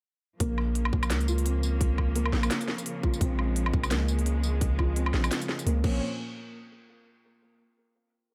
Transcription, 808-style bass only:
0.40 A#1
0.93 A#1
1.10 C#2
2.33 A#1
3.21 A#1
3.74 A#1
3.91 C#2
5.14 A#1
5.66 C#2
5.84 A#1

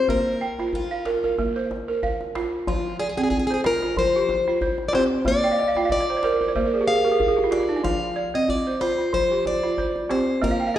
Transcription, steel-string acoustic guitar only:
0.10 A#4
0.75 F4
2.68 F4
2.99 G#4
3.09 G#4
3.17 G#4
3.23 G#4
3.30 G#4
3.39 G#4
3.47 G#4
3.54 G#4
3.66 A#4
3.99 C5
4.88 D5
4.95 C5
5.28 D5
5.92 D5
6.88 F5
7.52 D5
7.84 F5
8.35 D#5
8.50 D5
8.81 C5
9.14 C5
9.47 D5
10.11 C5
10.44 A#4

